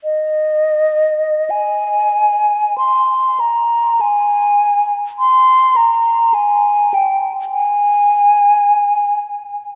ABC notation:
X:1
M:4/4
L:1/8
Q:1/4=51
K:Ab
V:1 name="Flute"
e2 a2 c' b a2 | c' b a g a3 z |]